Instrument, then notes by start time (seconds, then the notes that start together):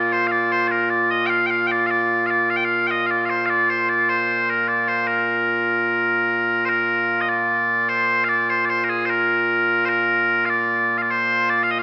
bagpipes
Already playing: A#2 A#3 F4 D5
0.12 C5
0.27 F5
0.31 D5
0.52 C5
0.68 A#4 D5
0.90 D5
1.11 D#5
1.26 F5 G5
1.46 G5
1.51 F5
1.67 G5
1.71 D5
1.86 F5
1.91 D5
2.26 D5 F5
2.50 F5
2.57 G5
2.65 F5
2.87 D#5 G5
3.06 F5
3.11 D5
3.25 F5
3.30 C5
3.46 D5 F5
3.70 C5
3.89 D5
4.09 C5
4.50 A#4
4.68 D5
4.88 C5
5.07 A#4
6.65 A#4 C5
7.21 D#5
7.29 D5
7.89 C5
8.24 F5
8.29 D5
8.50 C5
8.65 D5
8.69 C5
8.84 A#4
8.89 G#4
9.05 C5
9.10 A#4
9.86 A#4 C5
10.45 F5
10.50 D5
10.98 F5
11.02 D5
11.10 C5
11.50 D5
11.63 F5
11.71 D#5
11.79 F5